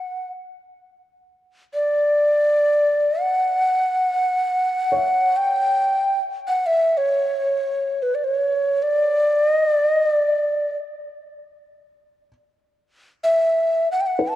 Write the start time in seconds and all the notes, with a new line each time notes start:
Already playing: F#5
1.74 D5
3.21 F#5
4.92 C#5
4.96 E5
5.37 G5
6.48 F#5
6.66 E5
6.97 C#5
8.02 B4
8.15 D5
8.24 C#5
8.83 D5
9.51 D#5
9.70 D5
9.90 D#5
10.08 D5
13.24 E5
13.92 F#5
14.01 G5
14.07 F#5
14.19 B4
14.30 A5